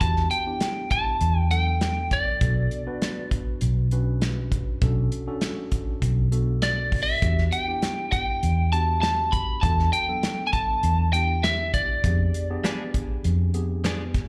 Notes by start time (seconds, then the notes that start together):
0.01 E2 B3 D4 F#4 G4 A5, kick, closed hi-hat
0.16 snare
0.31 G5, closed hi-hat
0.46 B3 D4 E4 G4
0.60 snare, closed hi-hat
0.91 A5, kick, closed hi-hat
1.21 E2, closed hi-hat
1.40 G5
1.51 F#3 B3 D4 A4 G5, closed hi-hat
1.81 snare, closed hi-hat
2.11 D5, kick, closed hi-hat
2.41 B1 B3 D4 F#4 A4, kick, closed hi-hat
2.71 closed hi-hat
2.87 B3 D4 F#4 B4
3.02 snare, closed hi-hat
3.31 kick, closed hi-hat
3.61 B1, closed hi-hat
3.91 C#4 D4 F#4 B4, closed hi-hat
4.22 snare, closed hi-hat
4.52 kick, closed hi-hat
4.82 B1 C#4 D4 F#4 A4, kick, closed hi-hat
5.12 closed hi-hat
5.27 C#4 D4 F#4 A4
5.41 snare, closed hi-hat
5.72 kick, closed hi-hat
6.02 B1, kick, closed hi-hat
6.32 B3 D4 F#4 A4, closed hi-hat
6.62 D5, snare, closed hi-hat
6.92 kick, open hi-hat
7.03 E5
7.22 E2 B3 D4 F#4 G4, kick, closed hi-hat
7.38 snare
7.52 G5, closed hi-hat
7.68 B3 D4 E4 G4
7.82 snare, closed hi-hat
8.12 G5, kick, closed hi-hat
8.43 E2, closed hi-hat
8.72 B3 D4 F#4 G4 A5, closed hi-hat
9.02 A5, snare, closed hi-hat
9.32 B5, kick, closed hi-hat
9.61 E2 B3 D4 F#4 A4 A5, kick, closed hi-hat
9.79 snare
9.93 G5, closed hi-hat
10.08 F#3 B3 D4 A4
10.23 snare, closed hi-hat
10.47 G#5
10.53 A5, kick, closed hi-hat
10.83 E2, closed hi-hat
11.13 B3 D4 E4 G4 G5, closed hi-hat
11.43 E5, snare, closed hi-hat
11.74 D5, kick, closed hi-hat
12.04 F2 B3 D4 G4 G#4, kick, closed hi-hat
12.34 closed hi-hat
12.50 B3 D4 G4 G#4
12.64 F3 B3 D4 G#4, snare, closed hi-hat
12.94 kick, closed hi-hat
13.24 F2, closed hi-hat
13.54 B3 D4 G4 G#4, closed hi-hat
13.84 F3 B3 D4 G#4, snare, closed hi-hat
14.14 kick, snare, closed hi-hat